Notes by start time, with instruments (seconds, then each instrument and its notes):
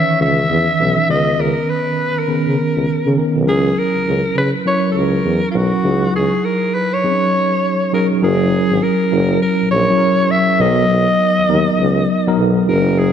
Already playing: tine electric piano D#3 E3 C#4 D#4 G#4 B4, alto saxophone E5
0.20 tuba C#2, alto saxophone E5
0.50 tuba E2
0.79 tuba B1, tine electric piano E3 C#4 D#4 B4
1.09 tuba C#2, tine electric piano D#3 B3 C#4 B4, alto saxophone D#5
1.38 tuba C#2, alto saxophone A#4
1.70 alto saxophone B4
2.19 alto saxophone A#4
2.28 tuba C#3, tine electric piano D#3 B3 C#4 G#4
2.35 tine electric piano A#4
2.47 tuba C#3
2.76 tuba C#2
3.06 tuba C#3
3.16 tine electric piano D#3 B3 C#4 A#4
3.36 tuba B1
3.46 tuba C#2, tine electric piano F#3 C#4 E4 A#4, alto saxophone G#4
3.79 alto saxophone A#4
3.94 tuba C#2
4.05 tuba C#2
4.35 tuba C#3, alto saxophone B4
4.65 tine electric piano F#3 C#4 E4 A#4, alto saxophone C#5
4.92 tuba C#2, alto saxophone A4
4.97 alto saxophone A#4
5.24 tuba E2
5.51 tuba B1, tine electric piano F#3 C#4 E4 A#4, alto saxophone F4
5.57 alto saxophone F#4
5.84 tuba C#2, tine electric piano F#3 D#4 E4 F#4
5.92 tine electric piano G#4
6.14 tuba C#2, alto saxophone G#4
6.45 alto saxophone A#4
6.74 alto saxophone B4
6.93 alto saxophone C#5
7.03 tine electric piano F#3 C4 D#4 G#4
7.10 tine electric piano C#4
7.92 tine electric piano F#3 C#4 D#4 G#4, alto saxophone A#4
8.22 tuba F#1, tine electric piano F#3 C#4 E4 A#4, alto saxophone G#4
8.71 tuba G#1
8.83 alto saxophone A#4
9.11 tuba F#1, tine electric piano F#3 C#4 E4 A#4
9.42 alto saxophone A#4
9.60 tuba A#1
9.70 tuba A#1, alto saxophone C#5
9.90 tine electric piano F#3 C#4 E4 G#4
9.98 tine electric piano A#4
10.31 alto saxophone E5
10.59 tuba B1, tine electric piano F#3 B3 D#4 A#4, alto saxophone D#5
10.89 tuba B1
11.38 tuba D#2
11.49 tuba D#2, tine electric piano F#3 B3 D#4 A#4
11.79 tuba C#2
12.27 tine electric piano F#3 B3 D#4 A#4
12.38 tuba B1
12.67 tuba F#1, tine electric piano F#3 C#4 E4 G#4, alto saxophone A#4
12.75 tine electric piano A#4
12.99 alto saxophone G#4